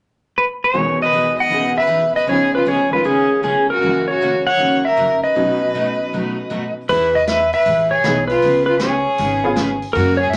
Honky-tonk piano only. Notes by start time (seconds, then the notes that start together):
0.73 E2 B2 D#3 G#3 F#4
1.49 C#3 E3 B3 G#4
2.26 C#2 C#3 F3 B3
2.31 D#4
2.91 D#3 G#3 C#4 F4
3.76 F#2 C#3
3.81 G#3 A#3
3.87 E3
4.57 D#3 A#3 C#4 F#4
5.35 B2 F#3 A3 C#4 D#4
8.04 B3 D#4 E4 G#4
9.44 B3 C#4 F4 G#4